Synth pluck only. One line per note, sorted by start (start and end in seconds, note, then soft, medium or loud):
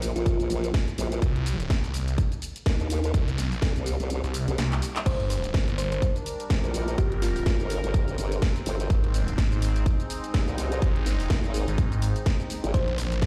0.16 0.50 F4 medium
5.06 5.28 C5 loud
5.30 5.68 C5 loud
5.78 5.87 C5 medium
5.92 5.98 C5 medium
6.98 7.17 G4 loud
7.22 7.70 F4 loud
12.74 12.96 C5 loud
12.98 13.26 C5 medium